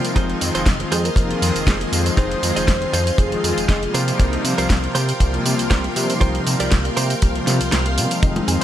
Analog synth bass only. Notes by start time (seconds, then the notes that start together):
0.16 F1
0.41 F2
0.55 F1
0.66 F1
0.92 F2
1.16 F1
1.42 F2
1.55 F1
1.67 F1
1.92 F2
2.17 F1
2.43 F2
2.56 F1
2.68 F1
2.93 F2
3.18 F1
3.44 F2
3.57 F1
3.69 F1
3.94 C3
4.19 C2
4.44 C3
4.58 C2
4.70 C2
4.95 C3
5.20 C2
5.46 C3
5.59 C2
5.71 C2
5.96 C3
6.21 C2
6.47 C3
6.60 C2
6.72 C2
6.97 C3
7.22 C2
7.47 C3
7.61 C2
7.72 C2
7.98 C3
8.23 F1
8.48 F2